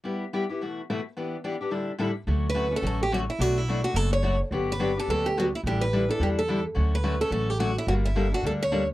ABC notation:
X:1
M:4/4
L:1/8
Q:"Swing" 1/4=215
K:D
V:1 name="Steel-string acoustic guitar"
z8 | z8 | z B2 A A G F E | F E2 F A c2 z |
z B2 A A G F E | G B2 A G A2 z | z B2 A A G F E | F E2 F A c2 z |]
V:2 name="Steel-string acoustic guitar"
[G,B,EG] z [G,B,EG] [B,EG] [B,,E,A,EF] z [B,,E,A,EF] z | [E,B,DG] z [E,B,DG] [B,DG] [A,,D,G,DEA] z [A,,D,G,DEA] z | [D,F,A,CF] z [D,F,A,CF] [A,CF] [D,F,A,CF] z [D,F,A,CF] z | [B,,F,A,DF] z [B,,F,A,DF] [A,DF] [B,,F,A,DF] z [B,,F,A,DF] z |
[D,F,B,DG] z [D,F,B,DG] [B,DG] [D,F,B,DG] z [D,F,B,DG] z | [D,G,DEA] z [D,G,DEA] [DEA] [D,G,DEA] z [D,G,DEA] z | [D,F,A,CF] z [D,F,A,CF] [A,CF] [D,F,A,CF] z [D,F,A,CF] z | [D,G,_B,DA] z [D,G,B,DA] [B,DA] [D,G,B,DA] z [D,G,B,DA] z |]
V:3 name="Upright bass" clef=bass
z8 | z8 | D,,4 A,,,4 | B,,,4 F,,,4 |
G,,,4 D,,4 | A,,,4 E,,4 | D,,4 A,,,4 | G,,,4 D,,4 |]